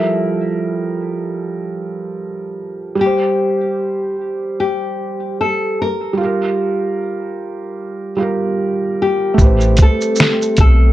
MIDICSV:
0, 0, Header, 1, 6, 480
1, 0, Start_track
1, 0, Tempo, 800000
1, 1791, Time_signature, 4, 2, 24, 8
1, 6557, End_track
2, 0, Start_track
2, 0, Title_t, "Nylon-string guitar"
2, 0, Program_c, 0, 24
2, 0, Note_on_c, 0, 64, 76
2, 1533, Note_off_c, 0, 64, 0
2, 1805, Note_on_c, 0, 67, 103
2, 2494, Note_off_c, 0, 67, 0
2, 2760, Note_on_c, 0, 67, 80
2, 3242, Note_off_c, 0, 67, 0
2, 3244, Note_on_c, 0, 69, 91
2, 3484, Note_off_c, 0, 69, 0
2, 3490, Note_on_c, 0, 70, 88
2, 5136, Note_off_c, 0, 70, 0
2, 5412, Note_on_c, 0, 67, 91
2, 5892, Note_off_c, 0, 67, 0
2, 5895, Note_on_c, 0, 69, 95
2, 6355, Note_off_c, 0, 69, 0
2, 6363, Note_on_c, 0, 69, 90
2, 6557, Note_off_c, 0, 69, 0
2, 6557, End_track
3, 0, Start_track
3, 0, Title_t, "Felt piano"
3, 0, Program_c, 1, 0
3, 0, Control_c, 1, 64, 127
3, 0, Note_on_c, 1, 53, 57
3, 0, Note_on_c, 1, 55, 67
3, 0, Note_on_c, 1, 69, 58
3, 0, Note_on_c, 1, 70, 68
3, 1751, Note_off_c, 1, 55, 0
3, 1761, Note_off_c, 1, 53, 0
3, 1772, Note_on_c, 1, 55, 64
3, 1773, Note_off_c, 1, 69, 0
3, 1784, Note_off_c, 1, 70, 0
3, 1794, Note_on_c, 1, 67, 56
3, 1799, Control_c, 1, 64, 0
3, 1836, Note_on_c, 1, 72, 65
3, 1891, Control_c, 1, 64, 127
3, 3671, Note_off_c, 1, 55, 0
3, 3680, Note_on_c, 1, 55, 59
3, 3688, Note_off_c, 1, 67, 0
3, 3705, Note_on_c, 1, 65, 56
3, 3709, Note_off_c, 1, 72, 0
3, 3719, Control_c, 1, 64, 0
3, 3726, Note_on_c, 1, 67, 55
3, 3749, Note_on_c, 1, 70, 64
3, 3838, Control_c, 1, 64, 127
3, 4871, Note_off_c, 1, 55, 0
3, 4884, Note_off_c, 1, 65, 0
3, 4894, Note_off_c, 1, 67, 0
3, 4899, Note_on_c, 1, 55, 58
3, 4906, Note_off_c, 1, 70, 0
3, 4909, Note_on_c, 1, 65, 50
3, 4922, Note_on_c, 1, 67, 51
3, 4934, Note_on_c, 1, 70, 61
3, 5604, Note_on_c, 1, 57, 65
3, 5617, Note_off_c, 1, 67, 0
3, 5625, Note_off_c, 1, 55, 0
3, 5626, Note_on_c, 1, 67, 51
3, 5630, Note_off_c, 1, 65, 0
3, 5640, Control_c, 1, 64, 0
3, 5642, Note_off_c, 1, 70, 0
3, 5648, Note_on_c, 1, 71, 58
3, 5670, Note_on_c, 1, 72, 66
3, 5727, Control_c, 1, 64, 127
3, 6557, Note_off_c, 1, 57, 0
3, 6557, Note_off_c, 1, 67, 0
3, 6557, Note_off_c, 1, 71, 0
3, 6557, Note_off_c, 1, 72, 0
3, 6557, End_track
4, 0, Start_track
4, 0, Title_t, "Analog synth pad"
4, 0, Program_c, 2, 89
4, 5628, Note_on_c, 2, 55, 75
4, 5631, Note_on_c, 2, 60, 80
4, 5631, Note_on_c, 2, 67, 88
4, 5632, Note_on_c, 2, 57, 76
4, 6557, Note_off_c, 2, 55, 0
4, 6557, Note_off_c, 2, 57, 0
4, 6557, Note_off_c, 2, 60, 0
4, 6557, Note_off_c, 2, 67, 0
4, 6557, End_track
5, 0, Start_track
5, 0, Title_t, "Upright bass"
5, 0, Program_c, 3, 32
5, 5631, Note_on_c, 3, 33, 95
5, 5855, Note_off_c, 3, 33, 0
5, 6351, Note_on_c, 3, 35, 90
5, 6557, Note_off_c, 3, 35, 0
5, 6557, End_track
6, 0, Start_track
6, 0, Title_t, "Drums"
6, 5629, Note_on_c, 9, 36, 98
6, 5631, Note_on_c, 9, 82, 51
6, 5689, Note_off_c, 9, 36, 0
6, 5691, Note_off_c, 9, 82, 0
6, 5763, Note_on_c, 9, 82, 48
6, 5823, Note_off_c, 9, 82, 0
6, 5860, Note_on_c, 9, 42, 64
6, 5860, Note_on_c, 9, 82, 46
6, 5872, Note_on_c, 9, 36, 81
6, 5920, Note_off_c, 9, 42, 0
6, 5920, Note_off_c, 9, 82, 0
6, 5932, Note_off_c, 9, 36, 0
6, 6007, Note_on_c, 9, 82, 47
6, 6067, Note_off_c, 9, 82, 0
6, 6093, Note_on_c, 9, 82, 59
6, 6120, Note_on_c, 9, 38, 110
6, 6153, Note_off_c, 9, 82, 0
6, 6180, Note_off_c, 9, 38, 0
6, 6250, Note_on_c, 9, 82, 47
6, 6310, Note_off_c, 9, 82, 0
6, 6340, Note_on_c, 9, 42, 57
6, 6340, Note_on_c, 9, 82, 41
6, 6349, Note_on_c, 9, 36, 92
6, 6400, Note_off_c, 9, 42, 0
6, 6400, Note_off_c, 9, 82, 0
6, 6409, Note_off_c, 9, 36, 0
6, 6557, End_track
0, 0, End_of_file